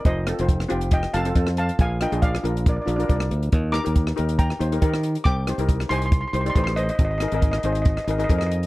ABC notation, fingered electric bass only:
X:1
M:4/4
L:1/16
Q:1/4=138
K:Eb
V:1 name="Fingered electric bass" clef=bass
F,,,3 F,,,3 F,,,4 F,,,2 F,,4 | B,,,3 B,,,3 B,,,4 B,,,2 C,,2 D,,2 | E,,3 E,,3 E,,4 E,,2 E,4 | C,,3 C,,3 C,,4 C,,2 =A,,,4 |
A,,,3 A,,,3 A,,,4 A,,,2 F,,4 |]